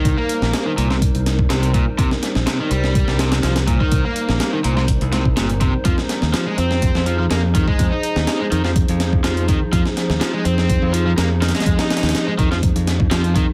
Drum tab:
HH |x---x---x---x---x-x-x---x-x-x---|x---x---x---x---x---x-x-x-x-x---|x---x---x---x---x-x-x---x-x-x---|x---x---x---x---x---x---x---x---|
SD |------o-o-----o-----o---o-------|--o-o-o-o-----o---o-o-o-o-o-----|------o-o-----o-----o---o-------|--o-o-o-o-----o---o-----o-------|
BD |o---------------o-----o-----o---|o---------------o-----------o-o-|o---------------o-----o-----o---|o---------------o-----------o-o-|

HH |x---x---x---x---x-x-x---x-x-x---|x---x---x---x---x---x---x---xxxx|x-x-xxxxx---x---x-x-x---x-x-x---|
SD |------o-o-----o-----o---o-------|--o-o-o-o-----o---------o---oooo|--o-ooooo-----o-----o---o-------|
BD |o---------------o-----o-----o---|o---------------o---------------|o-----------o---o-----o-----o---|